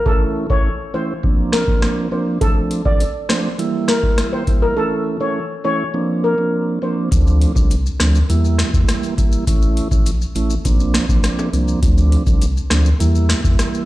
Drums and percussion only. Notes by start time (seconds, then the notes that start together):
0.06 kick
0.50 kick
1.24 kick
1.52 cross-stick, snare
1.68 kick
1.82 cross-stick, snare
2.41 kick, closed hi-hat
2.71 closed hi-hat
2.85 kick
3.00 closed hi-hat
3.29 cross-stick, snare, closed hi-hat
3.59 closed hi-hat
3.88 cross-stick, snare, closed hi-hat
4.03 kick
4.18 cross-stick, snare, closed hi-hat
4.47 kick, closed hi-hat
7.12 kick, closed hi-hat, maracas
7.27 maracas
7.41 closed hi-hat
7.56 kick, maracas
7.71 closed hi-hat, maracas
7.86 maracas
8.00 cross-stick, snare, closed hi-hat, maracas
8.15 maracas
8.30 closed hi-hat, maracas
8.44 maracas
8.59 cross-stick, snare, closed hi-hat
8.74 kick, maracas
8.88 cross-stick, snare, closed hi-hat, maracas
9.03 maracas
9.18 kick, closed hi-hat, maracas
9.32 maracas
9.47 kick, closed hi-hat, maracas
9.62 maracas
9.77 closed hi-hat
9.91 kick, maracas
10.06 closed hi-hat, maracas
10.21 maracas
10.35 closed hi-hat, maracas
10.50 maracas
10.65 kick, closed hi-hat, maracas
10.80 maracas
10.94 cross-stick, snare, closed hi-hat
11.09 kick, maracas
11.24 cross-stick, snare, closed hi-hat, maracas
11.39 high timbale, maracas
11.53 closed hi-hat, maracas
11.68 maracas
11.83 kick, closed hi-hat, maracas
11.98 maracas
12.12 closed hi-hat
12.27 kick, maracas
12.42 closed hi-hat, maracas
12.57 maracas
12.70 cross-stick, snare, closed hi-hat, maracas
12.86 maracas
13.00 closed hi-hat, maracas
13.15 maracas
13.29 cross-stick, snare, closed hi-hat
13.44 kick, maracas
13.59 cross-stick, snare, closed hi-hat, maracas
13.74 maracas